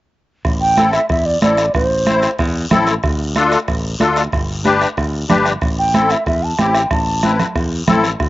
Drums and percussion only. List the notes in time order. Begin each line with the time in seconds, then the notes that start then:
0.45 bombo low, bombo rim, high conga, long guiro
0.77 bombo rim, high conga, short guiro
0.93 bombo rim, short guiro
1.09 bombo low, bombo rim, high conga, long guiro
1.42 bombo rim, high conga, short guiro
1.57 bombo rim, short guiro
1.74 bombo low, bombo rim, high conga, long guiro
2.06 bombo rim, high conga, short guiro
2.22 bombo rim, short guiro
2.39 bombo low, bombo rim, high conga, long guiro
2.70 bombo rim, high conga, low conga, short guiro
2.87 bombo rim, short guiro
3.03 bombo low, bombo rim, high conga, long guiro
3.36 bombo rim, high conga, short guiro
3.52 bombo rim, short guiro
3.68 bombo low, bombo rim, high conga, long guiro
4.00 bombo rim, high conga, short guiro
4.16 bombo rim, short guiro
4.32 bombo low, bombo rim, high conga, long guiro
4.65 bombo rim, high conga, short guiro
4.81 bombo rim, short guiro
4.97 bombo low, bombo rim, high conga, long guiro
5.30 bombo rim, high conga, low conga, short guiro
5.45 bombo rim, short guiro
5.61 bombo low, bombo rim, high conga, long guiro
5.94 bombo rim, high conga, short guiro
6.10 bombo rim, short guiro
6.26 bombo low, bombo rim, high conga, long guiro
6.59 bombo rim, high conga, short guiro
6.74 bombo rim, short guiro
6.91 bombo low, bombo rim, high conga, long guiro
7.23 bombo rim, high conga, short guiro
7.39 bombo rim, low conga, short guiro
7.56 bombo low, bombo rim, high conga, long guiro
7.88 bombo rim, high conga, low conga, short guiro
8.04 bombo rim, short guiro
8.20 bombo low, bombo rim, high conga, long guiro